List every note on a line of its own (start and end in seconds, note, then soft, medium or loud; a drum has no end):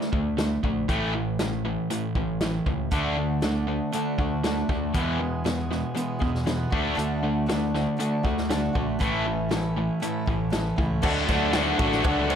0.00 0.10 D3 medium
0.00 0.10 A3 medium
0.00 snare soft
0.12 0.57 D2 medium
0.12 0.35 D3 medium
0.12 0.35 A3 medium
0.12 kick medium
0.37 0.60 D3 medium
0.37 0.61 A3 medium
0.37 snare loud
0.37 closed hi-hat medium
0.63 0.85 A#1 medium
0.63 0.86 D3 medium
0.63 0.86 A3 medium
0.63 kick medium
0.88 1.76 A1 medium
0.88 1.12 A2 medium
0.88 1.12 E3 medium
0.88 1.13 A3 medium
0.88 kick medium
0.88 closed hi-hat medium
1.14 1.37 A2 medium
1.14 1.37 E3 medium
1.39 1.63 A2 medium
1.39 1.63 E3 medium
1.39 snare medium
1.39 closed hi-hat soft
1.65 1.88 A2 medium
1.65 1.88 E3 medium
1.90 2.13 A2 medium
1.90 2.13 E3 medium
1.90 closed hi-hat medium
2.15 2.59 A1 medium
2.15 2.38 A2 medium
2.15 2.38 E3 medium
2.15 kick medium
2.40 2.64 A2 medium
2.40 2.64 E3 medium
2.40 snare medium
2.40 closed hi-hat medium
2.66 2.88 C#2 medium
2.66 2.89 A2 medium
2.66 2.89 E3 medium
2.66 kick medium
2.91 3.79 D2 medium
2.91 3.40 D3 medium
2.91 3.15 D3 medium
2.91 3.41 A3 medium
2.91 3.16 A3 medium
2.91 3.42 D4 medium
2.91 3.16 D4 medium
2.91 3.42 F#4 medium
2.91 kick loud
2.91 closed hi-hat medium
3.16 3.40 D3 medium
3.16 3.40 A3 medium
3.41 3.91 D3 medium
3.41 3.65 D3 medium
3.41 3.92 A3 medium
3.41 3.65 A3 medium
3.41 3.93 D4 medium
3.41 3.94 F#4 medium
3.41 snare medium
3.41 closed hi-hat soft
3.67 3.90 D3 medium
3.67 3.90 A3 medium
3.92 4.18 D3 medium
3.92 4.16 D3 medium
3.92 4.19 A3 medium
3.92 4.16 A3 medium
3.92 4.19 D4 medium
3.92 4.17 F#4 medium
3.92 closed hi-hat medium
4.18 4.62 D2 medium
4.18 4.41 D3 medium
4.18 4.41 A3 medium
4.18 4.44 A3 soft
4.18 4.45 D4 soft
4.18 4.44 F#4 soft
4.18 kick medium
4.43 4.67 D3 medium
4.43 4.69 D3 soft
4.43 4.67 A3 medium
4.43 4.70 A3 medium
4.43 4.70 D4 medium
4.43 4.68 F#4 medium
4.43 snare loud
4.43 closed hi-hat medium
4.69 4.91 D2 medium
4.69 4.92 D3 medium
4.69 4.92 A3 medium
4.69 4.96 A3 soft
4.69 4.95 D4 soft
4.69 4.94 F#4 soft
4.69 kick medium
4.94 5.82 E2 medium
4.94 5.45 E2 medium
4.94 5.18 E2 medium
4.94 5.45 B2 medium
4.94 5.19 B2 medium
4.94 5.43 E3 medium
4.94 5.19 E3 medium
4.94 5.44 G#3 medium
4.94 5.45 B3 medium
4.94 5.46 G#4 medium
4.94 kick medium
4.94 closed hi-hat soft
5.20 5.43 E2 medium
5.20 5.43 B2 medium
5.44 5.68 E2 medium
5.44 5.69 B2 medium
5.44 5.93 E3 medium
5.44 5.94 G#3 medium
5.44 5.95 B3 medium
5.44 5.96 G#4 medium
5.44 snare medium
5.44 closed hi-hat medium
5.71 5.94 E2 medium
5.71 5.94 B2 medium
5.71 snare soft
5.95 6.19 E2 medium
5.95 6.19 B2 medium
5.95 6.21 E3 medium
5.95 6.20 G#3 medium
5.95 6.19 B3 medium
5.95 6.18 G#4 medium
5.95 closed hi-hat medium
6.19 6.65 E2 medium
6.19 6.44 E2 medium
6.19 6.45 B2 medium
6.19 6.43 E3 soft
6.19 6.44 G#3 soft
6.19 6.46 B3 soft
6.19 6.46 G#4 medium
6.19 kick medium
6.35 snare soft
6.44 6.70 E2 medium
6.44 6.70 B2 medium
6.44 6.71 E3 medium
6.44 6.71 G#3 medium
6.44 6.72 B3 medium
6.44 6.70 G#4 medium
6.44 snare loud
6.44 closed hi-hat medium
6.70 6.94 D2 medium
6.70 6.96 D3 medium
6.70 6.96 A3 medium
6.70 6.95 A3 soft
6.70 6.96 D4 medium
6.70 6.97 D4 medium
6.70 6.96 F#4 medium
6.70 kick medium
6.95 7.85 D2 medium
6.95 7.45 D3 medium
6.95 7.21 D3 medium
6.95 7.47 A3 medium
6.95 7.21 A3 medium
6.95 7.47 D4 medium
6.95 7.48 F#4 medium
6.95 closed hi-hat medium
7.24 7.46 D3 medium
7.24 7.46 A3 medium
7.46 7.95 D3 medium
7.46 7.72 D3 medium
7.46 7.97 A3 medium
7.46 7.72 A3 medium
7.46 7.98 D4 medium
7.46 7.99 F#4 medium
7.46 snare medium
7.46 closed hi-hat medium
7.74 7.97 D3 medium
7.74 7.97 A3 medium
7.74 snare soft
7.97 8.23 D3 medium
7.97 8.22 D3 medium
7.97 8.24 A3 medium
7.97 8.23 A3 medium
7.97 8.23 D4 medium
7.97 8.22 F#4 medium
7.97 closed hi-hat medium
8.23 8.68 D2 medium
8.23 8.47 D3 medium
8.23 8.47 A3 medium
8.23 8.47 A3 soft
8.23 8.49 D4 soft
8.23 8.49 F#4 medium
8.23 kick medium
8.37 snare soft
8.48 8.74 D3 medium
8.48 8.72 D3 medium
8.48 8.75 A3 medium
8.48 8.73 A3 medium
8.48 8.74 D4 medium
8.48 8.72 F#4 medium
8.48 snare loud
8.48 closed hi-hat medium
8.73 8.97 A#1 medium
8.73 8.98 D3 medium
8.73 8.98 A3 medium
8.73 8.99 A3 soft
8.73 9.00 D4 soft
8.73 8.99 F#4 medium
8.73 kick medium
8.99 9.88 A1 medium
8.99 9.50 A2 medium
8.99 9.24 A2 medium
8.99 9.48 E3 medium
8.99 9.25 E3 medium
8.99 9.49 A3 medium
8.99 9.25 A3 medium
8.99 9.50 C#4 medium
8.99 9.51 E4 medium
8.99 kick medium
8.99 closed hi-hat soft
9.26 9.49 A2 medium
9.26 9.49 E3 medium
9.49 9.74 A2 medium
9.49 9.99 E3 medium
9.49 9.74 E3 medium
9.49 10.00 A3 medium
9.49 10.01 C#4 medium
9.49 10.02 E4 medium
9.49 snare medium
9.49 closed hi-hat soft
9.76 9.99 A2 medium
9.76 9.99 E3 medium
10.00 10.25 A2 medium
10.00 10.26 E3 medium
10.00 10.25 E3 medium
10.00 10.27 A3 medium
10.00 10.26 C#4 medium
10.00 10.25 E4 medium
10.00 closed hi-hat medium
10.26 10.71 A1 medium
10.26 10.50 A2 medium
10.26 10.50 E3 medium
10.26 10.50 A3 soft
10.26 10.51 C#4 soft
10.26 10.52 E4 soft
10.26 kick medium
10.50 10.75 A2 medium
10.50 10.77 E3 medium
10.50 10.75 E3 medium
10.50 10.77 A3 medium
10.50 10.77 C#4 medium
10.50 10.75 E4 medium
10.50 snare medium
10.50 closed hi-hat medium
10.76 11.00 C#2 medium
10.76 11.01 A2 medium
10.76 11.01 E3 medium
10.76 11.02 A3 soft
10.76 11.03 C#4 soft
10.76 11.02 E4 soft
10.76 kick medium
11.01 11.25 D2 medium
11.01 11.51 D3 medium
11.01 11.52 D3 medium
11.01 11.29 F#3 medium
11.01 11.52 A3 medium
11.01 11.27 A3 loud
11.01 12.35 D4 medium
11.01 11.53 D4 loud
11.01 11.54 F#4 loud
11.01 11.28 F#4 loud
11.01 12.35 A4 medium
11.01 11.44 A4 loud
11.01 11.44 D5 loud
11.01 12.35 F#5 medium
11.01 11.45 F#5 loud
11.01 kick loud
11.01 crash loud
11.01 cowbell loud
11.06 11.26 D4 loud
11.28 11.72 D2 medium
11.28 11.53 F#3 medium
11.28 11.53 A3 medium
11.28 11.54 D4 medium
11.28 11.55 F#4 medium
11.28 kick medium
11.28 snare soft
11.28 ride medium
11.28 cowbell medium
11.52 11.78 D3 medium
11.52 11.81 D3 medium
11.52 11.80 F#3 medium
11.52 11.79 A3 medium
11.52 11.78 D4 medium
11.52 11.77 F#4 medium
11.52 12.28 F#4 loud
11.52 11.94 A4 medium
11.52 11.95 D5 medium
11.52 11.95 F#5 medium
11.52 snare loud
11.52 ride medium
11.52 cowbell medium
11.79 12.01 A1 medium
11.79 12.03 D3 medium
11.79 12.04 F#3 medium
11.79 12.05 A3 medium
11.79 12.03 A3 soft
11.79 12.03 D4 soft
11.79 12.05 D4 medium
11.79 12.04 F#4 medium
11.79 kick medium
11.79 ride medium
11.92 snare soft
12.04 12.35 C#2 medium
12.04 12.35 D3 medium
12.04 12.31 F#3 medium
12.04 12.35 A3 medium
12.04 12.30 A3 medium
12.04 12.35 D4 loud
12.04 12.28 D4 medium
12.04 12.35 F#4 loud
12.04 12.35 A4 medium
12.04 12.35 D5 medium
12.04 12.35 F#5 medium
12.04 kick loud
12.04 ride medium
12.04 cowbell loud
12.29 12.35 F#3 medium
12.29 12.35 A3 medium
12.29 12.35 D4 medium
12.29 12.35 F#4 medium
12.29 ride medium
12.29 cowbell medium